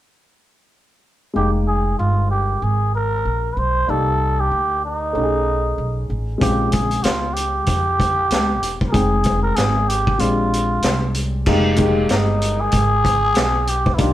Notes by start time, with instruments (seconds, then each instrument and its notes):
1.34 upright bass F1, grand piano G#3 A#3 D#4 G5, muted trumpet G4
1.67 muted trumpet G#4
1.99 upright bass G1, muted trumpet F4
2.31 muted trumpet G4
2.62 upright bass G#1, muted trumpet G#4
2.95 muted trumpet A#4
3.25 upright bass A#1
3.53 upright bass B1, muted trumpet B4
3.58 muted trumpet C5
3.87 upright bass C2, grand piano A#3 D#4 G4 D5, muted trumpet A4
4.40 muted trumpet G4
4.51 upright bass D2
4.85 muted trumpet D#4
5.13 upright bass B1, grand piano A3 C#4 D#4 G4
5.24 grand piano G#4
5.78 upright bass B1
6.10 upright bass A1
6.38 upright bass A#1, grand piano G#3 C4 C#4 F4, muted trumpet G4, kick, closed hi-hat
6.72 muted trumpet G#4, kick, closed hi-hat
6.91 closed hi-hat
7.03 upright bass C#2, muted trumpet F4, snare, closed hi-hat
7.33 muted trumpet G4, closed hi-hat
7.66 upright bass F2, kick, closed hi-hat
8.00 kick, closed hi-hat
8.30 upright bass C#2, snare, closed hi-hat
8.62 upright bass E1, closed hi-hat
8.81 kick
8.89 grand piano G#3, muted trumpet G#4 A#4
8.94 upright bass F1, grand piano C4 D#4 G5, kick, closed hi-hat
9.24 kick, closed hi-hat
9.43 muted trumpet A#4
9.56 upright bass G#1, muted trumpet G#4, snare, closed hi-hat
9.88 muted trumpet G4, closed hi-hat
10.07 kick
10.19 upright bass A#1, grand piano G#3 C4 D4 G4, muted trumpet F4, closed hi-hat
10.53 closed hi-hat
10.82 upright bass C2, snare, closed hi-hat
11.14 closed hi-hat
11.46 upright bass F1, grand piano G#3 A#3 D#4 G4, kick, crash
11.76 grand piano G#3 A#3 D#4 G4, kick, closed hi-hat
12.09 upright bass G1, muted trumpet D#4, snare, closed hi-hat
12.42 closed hi-hat
12.61 muted trumpet G#4
12.72 upright bass G#1, kick, closed hi-hat
13.05 kick, closed hi-hat
13.35 upright bass B1, snare, closed hi-hat
13.67 muted trumpet G4, closed hi-hat
13.86 kick
13.94 grand piano A#3, muted trumpet E4
13.98 upright bass C2, grand piano D4 D#4 G4, muted trumpet F4, kick, closed hi-hat